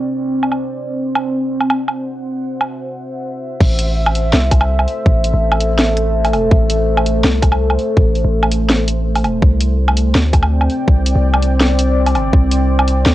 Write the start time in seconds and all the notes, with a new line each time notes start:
Already playing: C4 C5 D5 G5
0.43 low woodblock
0.51 low woodblock
0.94 F#5
1.15 low woodblock
1.56 E5
1.61 low woodblock
1.70 low woodblock
1.88 low woodblock
2.61 low woodblock
3.60 A1 A3, kick, crash
3.65 A4
3.79 closed hi-hat
4.06 low woodblock
4.15 closed hi-hat
4.33 C2, snare
4.51 kick, closed hi-hat, low woodblock
4.61 low woodblock
4.79 low woodblock
4.88 open hi-hat
5.06 A1, kick
5.24 closed hi-hat
5.34 A1
5.52 low woodblock
5.60 closed hi-hat
5.79 snare
5.97 closed hi-hat
6.25 open hi-hat, low woodblock
6.33 E1, open hi-hat, low woodblock
6.51 A1, kick
6.70 closed hi-hat
6.97 low woodblock
7.06 closed hi-hat
7.24 C2, snare
7.42 kick, closed hi-hat, low woodblock
7.52 low woodblock
7.70 low woodblock
7.79 open hi-hat
7.97 A1, kick
8.15 open hi-hat
8.24 A1
8.43 low woodblock
8.52 closed hi-hat
8.70 snare
8.88 closed hi-hat
9.15 open hi-hat, low woodblock
9.24 E1, open hi-hat, low woodblock
9.42 C2 C4, kick
9.48 D5
9.58 G5, closed hi-hat
9.88 low woodblock
9.97 closed hi-hat
10.15 D2, snare
10.33 kick, closed hi-hat, low woodblock
10.43 low woodblock
10.61 low woodblock
10.70 open hi-hat
10.88 C2, kick
11.06 closed hi-hat
11.15 C2
11.34 low woodblock
11.42 closed hi-hat
11.61 snare
11.79 closed hi-hat
12.06 open hi-hat, low woodblock
12.15 G1, open hi-hat, low woodblock
12.33 C2, kick
12.51 closed hi-hat
12.79 low woodblock
12.88 closed hi-hat
13.06 D2, snare